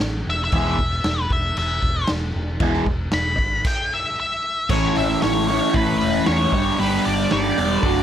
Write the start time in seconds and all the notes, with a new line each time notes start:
0.00 A1, snare
0.27 E1 E5
0.44 E5
0.52 E1 E3 G#3 B3 E4, kick, crash
0.56 G#4
0.66 snare
0.79 E1, kick
1.04 E1, snare, crash
1.20 B4
1.30 E1 E5, kick
1.57 E1 E5, crash
1.82 E1, kick
2.07 E1, snare, crash
2.36 E1
2.60 E1 E3 G#3 B3 E4 G#4, kick, crash
2.74 snare
2.86 E1, kick
3.11 E1 B5, snare, crash
3.38 G#1, kick
3.65 G5, kick, crash
3.94 E5
4.20 E5
4.69 A1 A2 E3 A3 C#4 E4 C#5, kick, crash
4.96 A1 E5, open hi-hat
5.22 A1 A2 E3 A3 C#4 E4 C#5, snare, open hi-hat
5.48 A2 E3 A3 C#4 E4 C#5, open hi-hat
5.74 A1 A2 E3 A3 C#4 E4 B4, kick, open hi-hat
5.99 E1 B4, open hi-hat
6.26 E2 A2 E3 A3 C#4 E4 C#5, snare, open hi-hat
6.40 snare
6.52 G1 G3 B3 D4 G4 C#5, kick, open hi-hat
6.78 G1 G3 B3 D4 G4 B4, open hi-hat
7.05 G1 D5, open hi-hat
7.31 G1 G3 B3 D4 G4 D5, snare, open hi-hat
7.57 E1 G3 B3 D4 G4, open hi-hat
7.83 F#1 F#3 A3 D4 F#4, kick, open hi-hat